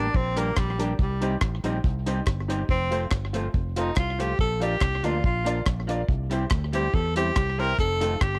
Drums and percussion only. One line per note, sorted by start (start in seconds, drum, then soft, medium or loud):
0.14 kick loud
0.37 closed hi-hat loud
0.57 kick loud
0.57 cross-stick loud
0.57 clap loud
0.80 closed hi-hat medium
0.99 kick loud
1.22 closed hi-hat medium
1.41 kick loud
1.41 cross-stick loud
1.41 clap medium
1.64 closed hi-hat medium
1.84 kick loud
2.06 closed hi-hat medium
2.26 kick loud
2.26 cross-stick loud
2.26 clap medium
2.50 closed hi-hat medium
2.69 kick loud
2.92 closed hi-hat medium
3.11 kick loud
3.11 cross-stick loud
3.11 clap loud
3.34 closed hi-hat medium
3.54 kick loud
3.76 closed hi-hat loud
3.96 kick loud
3.96 cross-stick loud
3.96 clap loud
4.20 closed hi-hat medium
4.39 kick loud
4.62 closed hi-hat medium
4.81 kick loud
4.81 cross-stick loud
4.81 clap loud
5.04 closed hi-hat medium
5.24 kick loud
5.46 closed hi-hat loud
5.66 kick loud
5.66 cross-stick loud
5.66 clap loud
5.89 closed hi-hat medium
6.09 kick loud
6.31 closed hi-hat medium
6.50 kick loud
6.50 cross-stick loud
6.50 clap loud
6.73 closed hi-hat medium
6.94 kick loud
7.16 closed hi-hat loud
7.36 kick loud
7.36 cross-stick loud
7.36 clap loud
7.59 open hi-hat medium
7.78 kick loud
7.78 hi-hat pedal medium
8.01 closed hi-hat medium
8.21 kick loud
8.21 cross-stick loud
8.21 clap loud